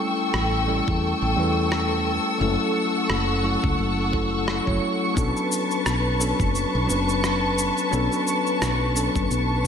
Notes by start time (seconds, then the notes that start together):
Already playing: G3 A3 C#4 E4 A4 G5 C#6 E6
0.34 A1, cross-stick
0.67 G3 A3 C#4 E4 A4
0.88 E2, kick
1.22 A1
1.36 E2 G3 A3 C#4 E4
1.40 B4
1.72 cross-stick
2.38 F#1 F#3 A3 C#4 E4 F#5 C#6
2.43 A4
3.10 F#1, cross-stick
3.43 F#3 A3 C#4 E4 A4
3.64 C#2, kick
3.79 F#1
4.12 F#3 A3 C#4 E4 A4, kick
4.48 cross-stick
4.66 F#1 F#3 A3 C#4 E4 C#5, kick
5.14 B1 F#3 B3 C#4 D4 A4 B4 A5, kick, shaker
5.37 shaker
5.52 shaker
5.71 shaker
5.86 B1, cross-stick, shaker
6.19 F#3 B3 C#4 D4 A4, shaker
6.40 F#1, kick, shaker
6.55 shaker
6.75 B1
6.87 F#1 F#3 B3 C#4 D4, shaker
6.91 B4
7.09 shaker
7.24 cross-stick, shaker
7.58 shaker
7.78 shaker
7.91 B1 F#3 B3 C#4 D4, shaker
7.95 A4
8.12 shaker
8.27 shaker
8.47 shaker
8.62 B1, cross-stick, shaker
8.95 F#3 B3 C#4 D4 A4, shaker
9.15 F#1, kick, shaker
9.31 B1, shaker
9.63 F#3 B3